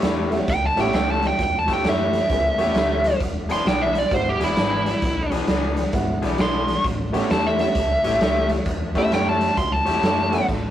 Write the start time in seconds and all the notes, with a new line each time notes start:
0.02 E2 A3 E4 G4 C#5, snare, closed hi-hat
0.31 A3 B3 C#4 E4 G4, snare, closed hi-hat
0.48 C#2 G5, kick, closed hi-hat
0.66 A5
0.76 A1 A3 B3 C#4 E4 G4 C#5 G5, snare, closed hi-hat
0.93 C#2 A3 E4 G4 C#5 G5, snare, closed hi-hat
1.11 A5
1.22 snare, closed hi-hat
1.27 G5
1.39 E2, kick, closed hi-hat
1.43 G5
1.59 A5
1.68 A3 E4 G4 C#5, kick, snare, closed hi-hat
1.74 G5
1.84 F#2 A3 E4 G4 C#5, snare, closed hi-hat
1.89 E5
2.13 snare, closed hi-hat
2.29 C#2 A#3 C4 D4 F4 G#4, kick, snare, closed hi-hat
2.58 E2 A3 B3 C#4 E4 G4 C#5, snare, closed hi-hat
2.75 D2 A3 E4 G4 C#5, snare, closed hi-hat
3.04 snare, closed hi-hat
3.20 E1, kick, closed hi-hat
3.49 E3 B3 D4 G#4 C6, snare, closed hi-hat
3.65 B1 E3 B3 D4 G#4 G5, snare, closed hi-hat
3.82 E5
3.95 D5, snare, closed hi-hat
4.11 G#1 G#3 B3 D4 E4 F#4 C5, kick, closed hi-hat
4.29 G4
4.40 E1 E3 B3 D4 G#4, snare, closed hi-hat
4.44 E4
4.56 G#1 E3 B3 D4 G#4, snare, closed hi-hat
4.86 snare, closed hi-hat
5.02 B1, kick, snare, closed hi-hat
5.31 E3 B3 D4 G#4, snare, closed hi-hat
5.47 C#2 E3 B3 D4 G#4, snare, closed hi-hat
5.77 snare, closed hi-hat
5.92 G#1 G#3 B3 D4 E4 F#4, kick, snare, closed hi-hat
6.22 B1 E3 B3 D4 G#4, snare, closed hi-hat
6.38 B1 E3 B3 D4 G#4 C6, snare, closed hi-hat
6.68 snare, closed hi-hat
6.84 A1, kick, closed hi-hat
7.12 A3 B3 C#4 E4 G4 C#5, snare, closed hi-hat
7.29 E2 A3 E4 G4 C#5 A5, snare, closed hi-hat
7.47 E5
7.58 A3 B3 C#4 E4 G4 E5, snare, closed hi-hat
7.75 C#2, kick, snare, closed hi-hat
8.04 A1 A3 E4 G4 C#5, snare, closed hi-hat
8.21 C#2 A3 E4 G4 C#5, snare, closed hi-hat
8.49 snare, closed hi-hat
8.65 E2, kick, closed hi-hat
8.94 A3 B3 C#4 E4 G4 C#5 E5, kick, snare, closed hi-hat
9.11 F#2 A3 E4 G4 C#5 G5, snare, closed hi-hat
9.29 A5
9.41 snare, closed hi-hat
9.57 C#2 C6, kick, closed hi-hat
9.72 A5
9.86 E2 A3 E4 G4 C#5, snare, closed hi-hat
10.03 F#2 A3 E4 G4 C#5, snare, closed hi-hat
10.32 A3 B3 C#4 E4 A4, snare, closed hi-hat
10.49 A1, kick, snare, ride